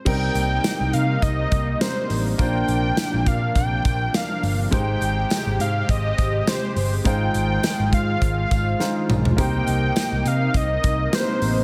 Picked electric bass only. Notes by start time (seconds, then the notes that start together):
0.06 C2
0.35 C2
0.81 C2
0.94 C3
1.22 C2
1.52 C2
2.10 A1
2.39 A#1
2.69 A#1
3.14 A#1
3.26 A#2
3.55 A#1
3.85 A#1
4.43 G1
4.72 G#1
5.01 G#1
5.47 G#1
5.60 G#2
5.89 G#1
6.18 G#1
6.76 G1
7.05 G#1
7.35 G#1
7.80 G#1
7.93 G#2
8.22 G#1
8.51 G#1
9.09 B1
9.38 C2
9.68 C2
10.12 C2
10.25 C3
10.54 C2
10.84 C2
11.42 A1